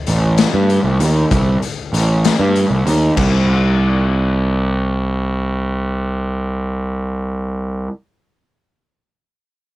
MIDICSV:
0, 0, Header, 1, 3, 480
1, 0, Start_track
1, 0, Tempo, 621118
1, 1012, Time_signature, 6, 3, 24, 8
1, 7537, End_track
2, 0, Start_track
2, 0, Title_t, "Picked electric bass"
2, 0, Program_c, 0, 34
2, 61, Note_on_c, 0, 33, 75
2, 338, Note_off_c, 0, 33, 0
2, 417, Note_on_c, 0, 43, 104
2, 602, Note_off_c, 0, 43, 0
2, 650, Note_on_c, 0, 36, 76
2, 744, Note_off_c, 0, 36, 0
2, 769, Note_on_c, 0, 39, 85
2, 956, Note_off_c, 0, 39, 0
2, 1014, Note_on_c, 0, 36, 93
2, 1199, Note_off_c, 0, 36, 0
2, 1489, Note_on_c, 0, 33, 66
2, 1770, Note_off_c, 0, 33, 0
2, 1850, Note_on_c, 0, 43, 93
2, 2037, Note_off_c, 0, 43, 0
2, 2091, Note_on_c, 0, 36, 78
2, 2184, Note_off_c, 0, 36, 0
2, 2207, Note_on_c, 0, 39, 78
2, 2395, Note_off_c, 0, 39, 0
2, 2449, Note_on_c, 0, 36, 85
2, 6084, Note_off_c, 0, 36, 0
2, 7537, End_track
3, 0, Start_track
3, 0, Title_t, "Drums"
3, 50, Note_on_c, 9, 42, 56
3, 128, Note_off_c, 9, 42, 0
3, 290, Note_on_c, 9, 42, 81
3, 299, Note_on_c, 9, 38, 112
3, 368, Note_off_c, 9, 42, 0
3, 376, Note_off_c, 9, 38, 0
3, 537, Note_on_c, 9, 42, 52
3, 615, Note_off_c, 9, 42, 0
3, 774, Note_on_c, 9, 42, 64
3, 852, Note_off_c, 9, 42, 0
3, 1012, Note_on_c, 9, 42, 73
3, 1015, Note_on_c, 9, 36, 98
3, 1089, Note_off_c, 9, 42, 0
3, 1092, Note_off_c, 9, 36, 0
3, 1254, Note_on_c, 9, 42, 50
3, 1331, Note_off_c, 9, 42, 0
3, 1498, Note_on_c, 9, 42, 57
3, 1575, Note_off_c, 9, 42, 0
3, 1734, Note_on_c, 9, 42, 82
3, 1743, Note_on_c, 9, 38, 106
3, 1812, Note_off_c, 9, 42, 0
3, 1820, Note_off_c, 9, 38, 0
3, 1975, Note_on_c, 9, 42, 60
3, 2052, Note_off_c, 9, 42, 0
3, 2215, Note_on_c, 9, 42, 58
3, 2293, Note_off_c, 9, 42, 0
3, 2450, Note_on_c, 9, 49, 79
3, 2452, Note_on_c, 9, 36, 90
3, 2527, Note_off_c, 9, 49, 0
3, 2530, Note_off_c, 9, 36, 0
3, 7537, End_track
0, 0, End_of_file